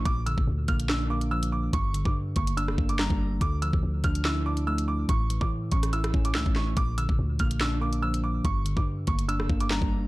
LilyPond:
<<
  \new Staff \with { instrumentName = "Upright piano" } { \time 4/4 \key bes \lydian \tempo 4 = 143 d'''8 e'''8 r8 f'''8 e'''8 d'''8 e'''8 d'''8 | cis'''8. d'''16 r8 cis'''8 e'''8. d'''16 bes''4 | d'''8 e'''8 r8 f'''8 e'''8 d'''8 e'''8 d'''8 | cis'''8. d'''16 r8 cis'''8 e'''8. d'''16 e'''8 cis'''8 |
d'''8 e'''8 r8 f'''8 e'''8 d'''8 e'''8 d'''8 | cis'''8. d'''16 r8 cis'''8 e'''8. d'''16 bes''4 | }
  \new Staff \with { instrumentName = "Tine electric piano" } { \time 4/4 \key bes \lydian bes,8 d4 bes8 d'8 bes8 f4 | g,8 d4 bes8 d'8 bes8 g4 | d8 f4 d'8 e'8 d'8 a4 | a,8 e4 cis'8 e'8 cis'8 a4 |
bes,8 d4 bes8 d'8 bes8 f4 | g,8 d4 bes8 d'8 bes8 g4 | }
  \new Staff \with { instrumentName = "808-style bass" } { \clef bass \time 4/4 \key bes \lydian bes,,8. bes,,16 d,8 bes,,2~ bes,,8 | g,,8. g,8. g,,8. f,,16 g,,8. g,,8. | d,8. d,16 d,8 d,2~ d,8 | a,,8. a,8. a,,4 a,,8 cis,16 a,,8. |
bes,,8. bes,,16 d,8 bes,,2~ bes,,8 | g,,8. g,8. g,,8. f,,16 g,,8. g,,8. | }
  \new DrumStaff \with { instrumentName = "Drums" } \drummode { \time 4/4 <hh bd>8 hh16 bd16 r8 <hh bd>16 hh16 <hc sn>8. hh16 r16 hh8. | <hh bd>8 hh16 bd16 r8 <hh bd>16 hh16 hh16 ss16 bd16 hh16 <hc sn>16 bd8. | <hh bd>8 hh16 bd16 r8 <hh bd>16 hh16 <hc sn>8. hh16 r16 hh8. | <hh bd>8 hh16 bd16 r8 <hh bd>16 <hh ss>16 hh16 <hh ss>16 bd16 hh16 <hc sn>16 bd16 sn8 |
<hh bd>8 hh16 bd16 r8 <hh bd>16 hh16 <hc sn>8. hh16 r16 hh8. | <hh bd>8 hh16 bd16 r8 <hh bd>16 hh16 hh16 ss16 bd16 hh16 <hc sn>16 bd8. | }
>>